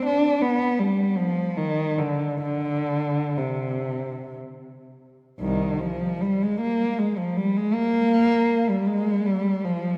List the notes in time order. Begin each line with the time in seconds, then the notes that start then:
0.06 D4
0.42 B3
0.79 G3
1.17 F3
1.57 D#3
1.98 D3
2.42 D3
3.37 C3
5.40 C2 D#3
5.81 F3
6.21 G3
6.43 G#3
6.61 A#3
6.99 G#3
7.18 F3
7.37 G3
7.57 G#3
7.74 A#3
8.69 G3
8.87 G#3
9.26 G3
9.64 F3